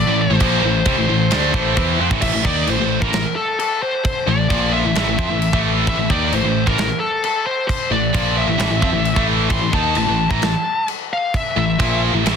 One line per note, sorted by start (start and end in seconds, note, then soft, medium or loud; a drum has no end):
0.00 0.20 D5 medium
0.06 0.28 A1 medium
0.06 0.25 A2 medium
0.06 0.25 E3 medium
0.21 1.97 C5 medium
0.29 0.40 A1 medium
0.29 0.40 A2 medium
0.29 0.41 E3 medium
0.40 0.62 A#1 medium
0.40 0.63 A#2 loud
0.40 0.63 F3 loud
0.40 0.63 A#3 loud
0.40 kick loud
0.40 china medium
0.63 0.85 A1 medium
0.63 0.82 A2 medium
0.63 0.82 E3 medium
0.85 0.97 C2 medium
0.85 0.97 C3 medium
0.85 0.97 G3 loud
0.85 kick loud
0.85 china medium
0.97 1.09 A1 medium
0.97 1.08 A2 medium
0.97 1.08 E3 medium
1.09 1.31 A1 medium
1.09 1.27 A2 medium
1.09 1.27 E3 medium
1.31 1.53 D2 loud
1.31 1.53 D3 medium
1.31 1.54 A3 medium
1.31 1.54 D4 medium
1.31 snare loud
1.31 china medium
1.53 1.75 A1 medium
1.53 1.76 A2 medium
1.53 1.75 E3 medium
1.53 1.77 A3 medium
1.53 kick loud
1.77 1.98 E2 medium
1.77 1.99 E3 medium
1.77 1.99 B3 medium
1.77 2.00 E4 loud
1.77 kick loud
1.77 china medium
2.00 2.10 F2 medium
2.00 2.11 F3 medium
2.00 2.11 C4 loud
2.11 2.22 A1 medium
2.11 2.22 A2 medium
2.11 2.23 E3 medium
2.11 kick loud
2.22 2.33 A1 medium
2.22 2.33 A2 medium
2.22 2.34 E3 loud
2.22 2.46 E5 loud
2.22 kick loud
2.22 crash loud
2.22 china soft
2.34 2.44 A1 medium
2.34 2.46 A2 medium
2.34 2.46 E3 medium
2.44 2.66 D#2 medium
2.44 2.68 D#3 medium
2.44 2.67 D#4 medium
2.44 2.67 D5 medium
2.44 kick medium
2.48 2.69 A#3 medium
2.48 2.69 D#4 medium
2.67 2.79 A1 medium
2.67 2.80 A2 medium
2.67 2.76 E3 medium
2.67 3.02 C5 medium
2.67 china soft
2.71 2.81 E3 medium
2.77 3.01 A1 medium
2.77 2.99 A2 medium
2.77 2.97 E3 medium
2.82 2.99 E3 medium
3.02 3.13 A1 medium
3.02 3.14 A2 medium
3.02 3.14 E3 medium
3.02 3.34 A#4 medium
3.02 kick loud
3.11 3.24 A1 medium
3.11 3.24 A2 medium
3.11 3.24 E3 medium
3.11 snare loud
3.11 china medium
3.15 3.26 A2 medium
3.15 3.26 E3 medium
3.36 3.58 A4 medium
3.60 3.82 A4 medium
3.60 china medium
3.82 4.03 C5 medium
4.04 4.26 C5 medium
4.04 kick loud
4.04 china medium
4.27 4.49 A1 medium
4.27 4.46 A2 medium
4.27 4.46 E3 medium
4.27 4.73 D5 medium
4.50 4.82 A#1 medium
4.50 4.84 A#2 medium
4.50 4.84 F3 medium
4.50 4.85 A#3 medium
4.50 kick medium
4.50 china medium
4.73 5.60 E5 medium
4.84 4.95 A1 medium
4.84 4.95 A2 medium
4.84 4.95 E3 medium
4.95 5.07 A1 loud
4.95 5.06 A2 medium
4.95 5.06 E3 medium
4.95 snare loud
4.95 china medium
5.07 5.18 A1 medium
5.07 5.18 A2 medium
5.07 5.19 E3 medium
5.18 5.29 F2 medium
5.18 5.29 F3 medium
5.18 5.30 C4 medium
5.18 kick loud
5.30 5.51 A1 medium
5.30 5.48 A2 medium
5.30 5.49 E3 medium
5.42 china medium
5.53 5.85 A1 medium
5.53 5.86 A2 loud
5.53 5.87 E3 loud
5.53 5.87 A3 loud
5.53 kick loud
5.87 5.97 A1 medium
5.87 5.98 A2 loud
5.87 5.99 E3 loud
5.87 6.09 E5 medium
5.87 kick medium
5.87 china medium
5.97 6.08 A1 medium
5.97 6.10 A2 medium
5.97 6.10 E3 medium
6.10 6.31 D#2 medium
6.10 6.33 D#3 medium
6.10 6.33 A#3 medium
6.10 6.33 D#4 medium
6.10 6.32 D5 medium
6.10 kick medium
6.32 6.43 A1 medium
6.32 6.43 A2 medium
6.32 6.44 E3 medium
6.32 6.67 C5 medium
6.32 china soft
6.44 6.65 A1 medium
6.44 6.62 A2 medium
6.44 6.63 E3 medium
6.66 6.77 A1 medium
6.66 6.77 A2 medium
6.66 6.78 E3 medium
6.66 7.00 A#4 medium
6.66 kick medium
6.78 6.89 A1 medium
6.78 6.90 A2 medium
6.78 6.90 E3 medium
6.78 snare loud
6.78 china soft
7.00 7.22 A4 medium
7.24 7.46 A4 medium
7.24 china medium
7.47 7.67 C5 medium
7.68 7.90 C5 medium
7.68 kick loud
7.68 china medium
7.91 8.13 A1 medium
7.91 8.10 A2 medium
7.91 8.10 E3 medium
7.91 8.38 D5 medium
8.13 8.46 A#1 medium
8.13 8.47 A#2 medium
8.13 8.48 F3 loud
8.13 8.48 A#3 medium
8.13 kick medium
8.13 china medium
8.38 9.25 E5 medium
8.48 8.57 A1 medium
8.48 8.57 A2 soft
8.48 8.58 E3 medium
8.58 8.69 A1 medium
8.58 8.69 A2 medium
8.58 8.70 E3 medium
8.58 snare loud
8.58 china medium
8.70 8.81 A1 medium
8.70 8.81 A2 medium
8.70 8.82 E3 medium
8.81 8.92 F2 medium
8.81 8.93 F3 medium
8.81 8.93 C4 medium
8.81 kick loud
8.93 9.15 A1 medium
8.93 9.12 A2 medium
8.93 9.12 E3 medium
9.05 china soft
9.16 9.49 A1 medium
9.16 9.50 A2 medium
9.16 9.51 E3 loud
9.16 9.51 A3 loud
9.16 kick medium
9.50 9.61 A1 medium
9.50 9.62 A2 medium
9.50 9.63 E3 medium
9.50 9.72 C6 loud
9.50 kick loud
9.50 china medium
9.62 9.73 A1 medium
9.62 9.74 A2 medium
9.62 9.75 E3 medium
9.73 9.95 D#2 medium
9.73 9.96 D#3 medium
9.73 9.97 A#3 medium
9.73 9.97 D#4 medium
9.73 9.96 A5 medium
9.73 kick medium
9.95 10.07 A1 medium
9.95 10.07 A2 medium
9.95 10.08 E3 medium
9.95 10.29 A5 medium
9.95 china soft
10.08 10.29 A1 medium
10.08 10.27 A2 medium
10.08 10.27 E3 medium
10.31 10.41 A1 medium
10.31 10.42 A2 medium
10.31 10.42 E3 medium
10.31 10.41 A#5 medium
10.31 kick loud
10.42 10.53 A1 medium
10.42 10.54 A2 medium
10.42 10.54 E3 medium
10.42 10.86 A5 medium
10.42 snare loud
10.42 china soft
10.88 china soft
11.13 11.35 F5 medium
11.34 11.57 E5 medium
11.34 kick loud
11.34 china medium
11.57 11.78 A1 medium
11.57 11.74 A2 medium
11.57 11.75 E3 medium
11.57 12.00 E5 medium
11.79 12.11 A#1 medium
11.79 12.13 A#2 medium
11.79 12.13 F3 medium
11.79 12.13 A#3 medium
11.79 kick medium
11.79 china medium
12.13 12.24 A1 medium
12.13 12.25 A2 medium
12.13 12.25 E3 medium
12.26 12.36 A1 loud
12.26 12.36 A2 medium
12.26 12.36 E3 medium
12.26 snare loud
12.26 china medium